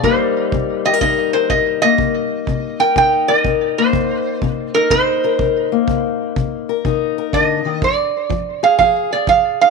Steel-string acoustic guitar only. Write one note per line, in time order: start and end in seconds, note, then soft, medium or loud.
0.03 0.49 C3 medium
0.03 3.54 G3 medium
0.03 1.83 A#3 soft
0.03 1.02 D#4 soft
0.03 0.85 A#4 medium
0.53 0.99 C3 medium
0.86 0.94 G4 medium
0.94 1.33 A#4 soft
1.01 1.47 C3 medium
1.01 2.96 D#4 medium
1.34 2.02 A#4 medium
1.51 1.96 C3 medium
1.84 3.78 A#3 medium
1.99 2.44 C3 medium
2.48 2.94 C3 medium
2.80 3.29 A#4 medium
2.96 3.42 C3 medium
2.96 4.75 D#4 medium
3.29 3.95 A#4 medium
3.45 3.90 C3 medium
3.79 5.71 A#3 medium
3.92 4.38 C3 medium
4.42 4.88 C3 medium
4.75 4.92 D#4 medium
4.91 5.36 C3 medium
4.91 6.85 D#4 medium
5.24 5.87 A#4 medium
5.39 5.85 C3 medium
5.72 7.83 A#3 medium
5.87 6.33 C3 medium
6.36 6.82 C3 medium
6.69 7.17 A#4 medium
6.85 7.30 C3 medium
6.85 7.85 D#4 medium
7.18 7.81 A#4 medium
7.33 7.65 D3 soft
7.65 7.82 D#3 medium
7.82 8.28 F3 medium
8.29 8.75 F3 medium
8.63 8.80 G#4 medium
8.80 9.25 F3 medium
8.80 9.12 G#4 medium
9.14 9.70 G#4 medium
9.29 9.70 F3 medium
9.63 9.70 D#4 medium